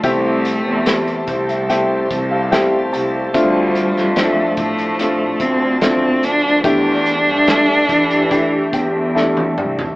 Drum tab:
HH |x-x-xxxxx-x-x-x-|x-x-x-xxx-x-x-x-|x-x-x-xxx-x-----|
SD |----o-------o---|---oo-------o---|----o-------o---|
T1 |----------------|----------------|-------------o--|
T2 |----------------|----------------|--------------o-|
FT |----------------|----------------|---------------o|
BD |o-----o---o-----|o-----o---o-----|o-----o-o-o-----|